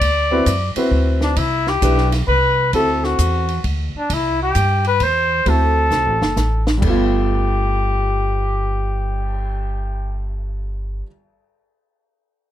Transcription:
Already playing: trumpet D5
0.01 upright bass D2, kick, ride
0.31 grand piano C4 E4 F#4 B4
0.46 upright bass F#2, kick, hi-hat pedal, ride
0.76 grand piano C4 E4 F#4 B4, muted upright bass stroke, ride
0.91 upright bass D2, kick
1.21 trumpet D4, snare
1.36 upright bass C2, trumpet E4, kick, ride
1.67 trumpet G4, snare
1.82 upright bass B1, grand piano D4 E4 G4 B4, kick, hi-hat pedal, ride
1.98 snare
2.12 snare, ride
2.28 upright bass C2, trumpet B4, kick
2.73 upright bass D2, grand piano C4 E4 F#4 A4, trumpet A4, kick, ride
3.04 trumpet F#4, snare
3.19 upright bass E2, kick, hi-hat pedal, ride
3.48 ride
3.64 upright bass D2, kick, ride
3.95 trumpet D4, muted upright bass stroke
4.10 upright bass C2, trumpet E4, kick, ride
4.42 trumpet G4
4.55 upright bass G2, kick, hi-hat pedal, ride
4.84 trumpet B4, ride
5.00 upright bass E2, trumpet C5, kick, ride
5.46 upright bass D2, grand piano A3 C4 E4 F#4, trumpet A4, kick, ride
5.91 upright bass C2, snare, hi-hat pedal
6.06 upright bass A1
6.21 upright bass F#1, snare
6.36 upright bass A1, snare, hi-hat pedal
6.67 snare
6.77 grand piano G2 G3
6.82 upright bass G1, grand piano A3, trumpet G4, kick, crash
6.87 grand piano B3 F4
7.12 cymbal swell

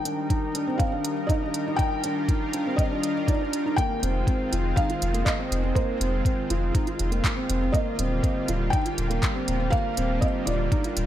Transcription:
Already playing: analog synth pad D#3 G3 D#4 A#4, felt piano G5
0.05 felt piano D4, closed hi-hat
0.30 felt piano D#4, kick, closed hi-hat
0.55 felt piano D4, closed hi-hat
0.67 felt piano C4
0.78 felt piano F5, kick, closed hi-hat
0.92 felt piano D4
1.05 closed hi-hat
1.27 felt piano D#4 D#5, kick, closed hi-hat
1.42 felt piano D4
1.54 closed hi-hat
1.67 felt piano D#4
1.76 felt piano D#4 G5, analog synth pad F4, kick, closed hi-hat
2.04 felt piano D4, closed hi-hat
2.28 felt piano D#4, kick, closed hi-hat
2.53 felt piano D4, closed hi-hat
2.66 felt piano C4
2.76 felt piano D#5, kick, closed hi-hat
2.91 felt piano D4
3.03 closed hi-hat
3.26 felt piano D#4 D5, kick, closed hi-hat
3.41 felt piano D4
3.53 closed hi-hat
3.66 felt piano D#4
3.76 analog synth pad D#3 G#3 C4 F4, felt piano A#3 G5, kick, closed hi-hat
4.03 sub bass F1, felt piano C4, closed hi-hat
4.27 felt piano C4, kick, closed hi-hat
4.52 sub bass F1, felt piano F4, closed hi-hat
4.76 felt piano D#4 F5, kick, closed hi-hat
4.89 felt piano F4, closed hi-hat
5.02 sub bass F1, closed hi-hat
5.14 felt piano A#3, closed hi-hat
5.25 felt piano D#5, kick, clap, closed hi-hat
5.39 felt piano C4
5.51 sub bass F1, closed hi-hat
5.64 felt piano C4
5.75 felt piano A#3 C5, analog synth pad F4, kick, closed hi-hat
6.00 sub bass F1, felt piano C4, closed hi-hat
6.25 felt piano C4, kick, closed hi-hat
6.50 sub bass F1, felt piano F4, closed hi-hat
6.75 felt piano D#4, kick, closed hi-hat
6.87 felt piano F4, closed hi-hat
6.99 sub bass F1, closed hi-hat
7.12 felt piano A#3, closed hi-hat
7.24 kick, clap, closed hi-hat
7.36 felt piano C4
7.49 sub bass F1, closed hi-hat
7.62 felt piano C4
7.72 analog synth pad D3 G3 A#3, felt piano A#3 D#5, kick, closed hi-hat
7.99 sub bass D#1, felt piano C4, closed hi-hat
8.23 felt piano C4, kick, closed hi-hat
8.48 sub bass D#1, felt piano F4, closed hi-hat
8.70 felt piano D#4 G5, kick, closed hi-hat
8.86 felt piano F4, closed hi-hat
8.98 sub bass D#1, closed hi-hat
9.10 felt piano A#3, closed hi-hat
9.23 kick, clap, closed hi-hat
9.35 felt piano C4
9.48 sub bass D#1, closed hi-hat
9.60 felt piano C4
9.70 felt piano A#3 F5, kick, closed hi-hat
9.97 sub bass D#1, felt piano C4, closed hi-hat
10.21 felt piano C4 D#5, kick, closed hi-hat
10.45 sub bass D#1, felt piano F4 D5, closed hi-hat
10.72 felt piano D#4, kick, closed hi-hat
10.84 felt piano F4, closed hi-hat
10.97 sub bass D#1, closed hi-hat

